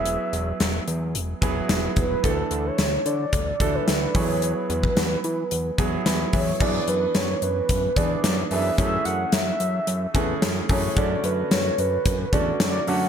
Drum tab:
CC |----------------|----------------|----------------|x---------------|
HH |x-x-x-x-x-x-x-x-|x-x-x-x-x-x-x-o-|x-x-x-x-x-x-x-o-|--x-x-x-x-x-x-o-|
SD |----o-------o---|----o-------o---|----o-------o---|----o-------o---|
BD |----------o---o-|o-------o-o---o-|---o------o---o-|o-------o-o-----|

CC |----------------|----------------|
HH |x-x-x-x-x-x-x-o-|x-x-x-x-x-x-x-o-|
SD |----o-------o---|----o-------o---|
BD |o---------o---o-|o-------o-o-----|